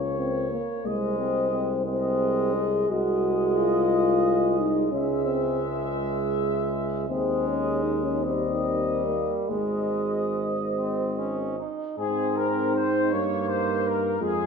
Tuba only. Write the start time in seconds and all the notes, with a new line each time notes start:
Already playing: C#2
0.85 C2
2.90 C2
4.93 C#2
7.09 D#2
9.50 G#1
11.99 G#2
13.13 G2
14.21 F2